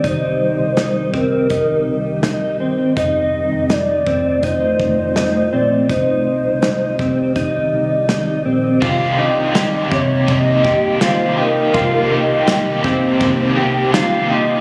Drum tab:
CC |--------|--------|--------|x-------|
RD |--------|--------|--------|--x-x-x-|
HH |x-x-x-x-|x-x-x-x-|x-x-x-x-|--------|
TB |--------|--------|--------|--x---x-|
SD |--o---o-|--o---o-|--o---o-|--o---o-|
BD |o--oo---|o--ooo--|o--oo---|o--ooo--|

CC |--------|
RD |x-x-x-x-|
HH |--------|
TB |--x---x-|
SD |--o---o-|
BD |o--oo---|